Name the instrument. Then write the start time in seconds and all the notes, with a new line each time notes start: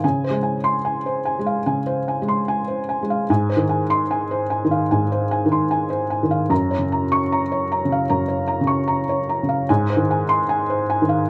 felt piano
0.04 C#3 G#5
0.24 C5
0.31 G#3
0.43 G#5
0.64 C6
0.85 G#5
1.06 C5
1.25 G#5
1.39 G#3
1.46 F5
1.66 C#3 G#5
1.86 C5
2.08 G#5
2.22 G#3
2.28 C6
2.48 G#5
2.68 C5
2.89 G#5
3.02 G#3
3.10 F5
3.30 G#2 G#5
3.50 C5
3.57 D#3
3.69 G#5
3.90 C6
4.11 G#5
4.31 C5
4.50 G#5
4.65 D#3
4.71 F5
4.91 G#2 G#5
5.12 C5
5.31 G#5
5.46 D#3
5.52 C6
5.71 G#5
5.90 C5
6.10 G#5
6.23 D#3
6.31 F5
6.50 F#2 A#5
6.71 C#5
6.78 C#3
6.92 A#5
7.12 C#6
7.32 A#5
7.52 C#5
7.72 A#5
7.85 C#3
7.92 F5
8.10 F#2 A#5
8.28 C#5
8.48 A#5
8.61 C#3
8.67 C#6
8.88 A#5
9.09 C#5
9.29 A#5
9.43 C#3
9.49 F5
9.69 G#2 G#5
9.90 C5
9.97 D#3
10.11 G#5
10.29 C6
10.49 G#5
10.70 C5
10.90 G#5
11.02 D#3
11.09 F5